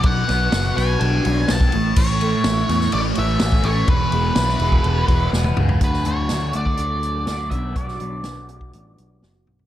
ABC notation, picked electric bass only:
X:1
M:4/4
L:1/8
Q:1/4=124
K:Bdor
V:1 name="Picked electric bass" clef=bass
B,,, B,,, F,,, B,,, B,,, B,,, B,,, A,,, | A,,,2 A,,, E,, A,,, A,,, A,,, A,,, | E,,, E,,, B,,, E,,, E,,, E,,, E,,, C,, | D,, D,, D,, D,, D,,2 D,, B,,, |
B,,, B,,, B,,,2 A,,, B,,, F,,, B,,, |]